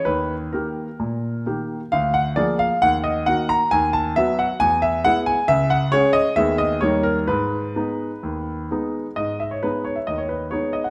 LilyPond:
<<
  \new Staff \with { instrumentName = "Grand piano" } { \time 4/4 \key gis \minor \tempo 4 = 132 b'4 ais'2 r4 | eis''8 fis''8 d''8 eis''8 fis''8 dis''8 fis''8 ais''8 | gis''8 a''8 e''8 fis''8 gis''8 e''8 fis''8 gis''8 | e''8 fis''8 cis''8 dis''8 e''8 dis''8 cis''8 ais'8 |
b'2.~ b'8 r8 | dis''8 e''16 cis''16 b'8 cis''16 e''16 dis''16 cis''16 b'8 cis''8 dis''16 fis''16 | }
  \new Staff \with { instrumentName = "Grand piano" } { \time 4/4 \key gis \minor dis,4 <dis ais g'>4 ais,4 <dis ais g'>4 | d,4 <eis ais gis'>4 dis,4 <dis ais fis'>4 | dis,4 <fis b fis'>4 e,4 <gis b e'>4 | cis,4 <gis cis' gis'>4 <dis, gis b gis'>4 <dis, g ais dis'>4 |
gis,4 <gis b dis'>4 dis,4 <gis b dis'>4 | gis,4 <gis b dis'>4 dis,4 <gis b dis'>4 | }
>>